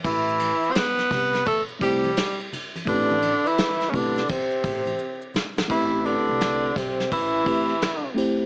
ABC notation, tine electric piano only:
X:1
M:4/4
L:1/8
Q:"Swing 16ths" 1/4=85
K:Am
V:1 name="Tine electric piano"
z4 z [A,CEGc] z2 | [A,CEGB] z2 [A,CEGB] z4 | [A,CEGB]3 z2 [A,CEGB] z [A,CEGc] |]